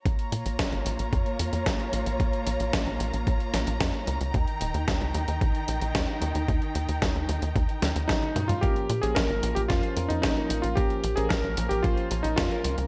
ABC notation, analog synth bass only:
X:1
M:4/4
L:1/16
Q:1/4=112
K:Bbdor
V:1 name="Analog synth bass" clef=bass
B,,, z B,, B,,, B,,, A,,, B,,, B,,, F,, z F,, F,, B,,, z B,,, B,,, | B,,, z B,,, B,,, B,,, B,,, B,,, B,,, B,,, z B,,, B,,, F,, z D,, D,, | E,, z E,,, E,, E,, D,, E,, E,, B,,, z B,,, B,,, E,, z E,, E,, | E,, z E,, E,, E,, E,, E,, E,, E,, z E,, E,, B,,, z G,, G,, |
B,,, z B,, B,,, B,,, A,,, B,,, B,,, F,, z F,, F,, B,,, z B,,, B,,, | B,,, z B,,, B,,, B,,, B,,, B,,, B,,, B,,, z B,,, B,,, F,, z D,, D,, |]